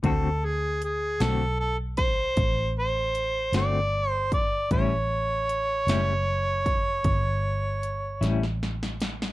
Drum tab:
HH |x---x-x---x-x---x-x---x-|x---x-x---x-x---x-x---x-|
SD |------o-----------o-----|------o-----------oooooo|
BD |o---------o-o---------o-|o---------o-o-----------|